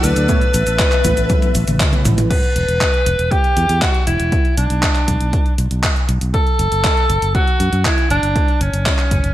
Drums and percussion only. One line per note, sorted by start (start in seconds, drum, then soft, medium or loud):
0.04 closed hi-hat medium
0.04 cabasa medium
0.16 closed hi-hat medium
0.16 cabasa soft
0.29 kick loud
0.29 closed hi-hat medium
0.29 cabasa soft
0.42 closed hi-hat soft
0.42 cabasa soft
0.54 closed hi-hat medium
0.54 cabasa medium
0.67 closed hi-hat medium
0.67 cabasa soft
0.79 kick loud
0.79 clap loud
0.79 closed hi-hat medium
0.79 cabasa soft
0.92 clap soft
0.92 closed hi-hat soft
0.92 cabasa soft
1.04 kick medium
1.04 closed hi-hat loud
1.04 cabasa medium
1.17 closed hi-hat medium
1.17 cabasa soft
1.30 kick loud
1.30 closed hi-hat medium
1.30 high tom medium
1.30 cabasa soft
1.42 closed hi-hat soft
1.42 high tom medium
1.42 cabasa soft
1.55 closed hi-hat loud
1.55 cabasa medium
1.68 closed hi-hat medium
1.68 mid tom medium
1.68 cabasa soft
1.80 kick loud
1.80 clap loud
1.80 closed hi-hat medium
1.80 mid tom medium
1.80 cabasa soft
1.93 closed hi-hat soft
1.93 mid tom medium
1.93 cabasa soft
2.05 closed hi-hat loud
2.05 mid tom loud
2.05 cabasa medium
2.18 closed hi-hat medium
2.18 mid tom loud
2.18 cabasa soft
2.31 kick loud
2.31 closed hi-hat medium
2.31 crash medium
2.43 closed hi-hat soft
2.56 closed hi-hat medium
2.68 closed hi-hat medium
2.81 kick loud
2.81 clap loud
2.81 closed hi-hat medium
2.94 closed hi-hat soft
3.06 closed hi-hat loud
3.19 closed hi-hat medium
3.31 kick loud
3.31 closed hi-hat medium
3.44 closed hi-hat soft
3.57 closed hi-hat medium
3.69 closed hi-hat medium
3.82 kick loud
3.82 clap loud
3.82 closed hi-hat medium
3.94 closed hi-hat soft
4.07 closed hi-hat loud
4.20 closed hi-hat medium
4.32 kick loud
4.32 closed hi-hat medium
4.45 closed hi-hat soft
4.57 closed hi-hat medium
4.70 closed hi-hat medium
4.83 kick loud
4.83 clap loud
4.83 closed hi-hat medium
4.95 clap soft
4.95 closed hi-hat soft
5.08 kick medium
5.08 closed hi-hat medium
5.21 closed hi-hat medium
5.33 kick loud
5.33 closed hi-hat medium
5.46 closed hi-hat soft
5.58 closed hi-hat medium
5.71 closed hi-hat medium
5.83 kick loud
5.83 clap loud
5.83 closed hi-hat medium
5.96 closed hi-hat soft
6.09 closed hi-hat medium
6.21 closed hi-hat medium
6.34 kick loud
6.34 closed hi-hat medium
6.47 closed hi-hat soft
6.59 closed hi-hat medium
6.72 closed hi-hat medium
6.84 kick loud
6.84 clap loud
6.84 closed hi-hat medium
6.97 closed hi-hat soft
7.10 closed hi-hat medium
7.22 closed hi-hat soft
7.35 kick loud
7.35 closed hi-hat medium
7.47 closed hi-hat soft
7.60 closed hi-hat medium
7.73 closed hi-hat medium
7.85 kick loud
7.85 clap loud
7.85 closed hi-hat medium
7.98 closed hi-hat soft
8.10 closed hi-hat medium
8.23 closed hi-hat medium
8.36 kick loud
8.36 closed hi-hat soft
8.48 closed hi-hat soft
8.61 closed hi-hat medium
8.73 closed hi-hat medium
8.86 kick loud
8.86 clap loud
8.86 closed hi-hat soft
8.99 clap soft
8.99 closed hi-hat soft
9.11 kick medium
9.11 closed hi-hat medium
9.24 closed hi-hat soft